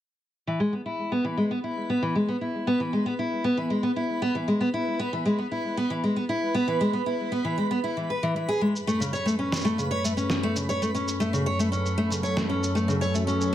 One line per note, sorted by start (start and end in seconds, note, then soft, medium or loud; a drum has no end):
0.47 0.59 E3 medium
0.47 13.55 B4 medium
0.47 13.55 B5 medium
0.60 0.72 G#3 medium
0.73 0.80 B3 medium
0.86 1.10 E4 medium
1.12 1.24 B3 medium
1.24 1.36 E3 medium
1.37 1.50 G#3 medium
1.51 1.58 B3 medium
1.64 1.88 E4 medium
1.90 2.01 B3 medium
2.02 2.14 E3 medium
2.15 2.28 G#3 medium
2.28 2.36 B3 medium
2.41 2.66 E4 medium
2.67 2.79 B3 medium
2.80 2.92 E3 medium
2.93 3.05 G#3 medium
3.06 3.13 B3 medium
3.19 3.43 E4 medium
3.44 3.56 B3 medium
3.57 3.69 E3 medium
3.70 3.83 G#3 medium
3.83 3.91 B3 medium
3.96 4.21 E4 medium
4.22 4.34 B3 medium
4.35 4.47 E3 medium
4.48 4.60 G#3 medium
4.61 4.68 B3 medium
4.74 4.98 E4 medium
4.99 5.11 B3 medium
5.13 5.25 E3 medium
5.25 5.38 G#3 medium
5.39 5.46 B3 medium
5.51 5.76 E4 medium
5.77 5.89 B3 medium
5.90 6.02 E3 medium
6.04 6.16 G#3 medium
6.16 6.24 B3 medium
6.29 6.54 E4 medium
6.54 6.66 B3 medium
6.68 6.80 E3 medium
6.81 6.93 G#3 medium
6.93 7.01 B3 medium
7.06 7.31 E4 medium
7.32 7.44 B3 medium
7.45 7.57 E3 medium
7.58 7.70 G#3 medium
7.71 7.79 B3 medium
7.84 7.96 E4 medium
7.97 8.09 E3 medium
8.10 8.22 B4 medium
8.23 8.35 E3 medium
8.36 8.48 E3 medium
8.48 8.60 G#4 medium
8.61 8.73 G#3 medium
8.76 13.55 F#2 medium
8.76 13.55 F#3 medium
8.76 13.55 C#4 medium
8.76 13.55 A4 medium
8.76 shaker soft
8.87 8.99 A3 medium
8.87 shaker soft
9.00 9.12 C#3 medium
9.00 shaker medium
9.13 9.25 C#5 medium
9.13 shaker soft
9.26 9.33 A3 medium
9.26 shaker soft
9.39 9.64 C#4 medium
9.52 snare medium
9.52 shaker medium
9.56 shaker medium
9.58 shaker soft
9.61 shaker soft
9.64 9.77 A3 medium
9.64 shaker soft
9.78 9.90 C#3 medium
9.78 shaker soft
9.91 10.03 C#5 medium
10.04 10.12 A3 medium
10.04 shaker medium
10.17 10.42 C#4 medium
10.17 shaker soft
10.30 snare medium
10.30 shaker soft
10.43 10.55 A3 medium
10.56 10.68 C#3 medium
10.56 shaker medium
10.69 10.81 C#5 medium
10.69 shaker soft
10.82 10.89 A3 medium
10.82 shaker soft
10.95 11.19 C#4 medium
10.95 shaker soft
11.08 shaker medium
11.20 11.32 A3 medium
11.20 shaker soft
11.33 11.45 C#3 medium
11.33 shaker soft
11.46 11.58 C#5 medium
11.59 11.67 A3 medium
11.59 shaker medium
11.72 11.97 C#4 medium
11.72 shaker soft
11.86 shaker soft
11.98 12.10 A3 medium
12.10 12.22 C#3 medium
12.10 shaker medium
12.23 12.35 C#5 medium
12.23 shaker soft
12.37 12.44 A3 medium
12.37 snare medium
12.37 shaker soft
12.49 12.74 C#4 medium
12.63 shaker medium
12.75 12.87 A3 medium
12.75 shaker soft
12.88 13.00 C#3 medium
12.88 shaker soft
13.01 13.13 C#5 medium
13.01 shaker soft
13.14 13.22 A3 medium
13.14 shaker medium
13.27 13.52 C#4 medium
13.27 shaker soft
13.41 shaker soft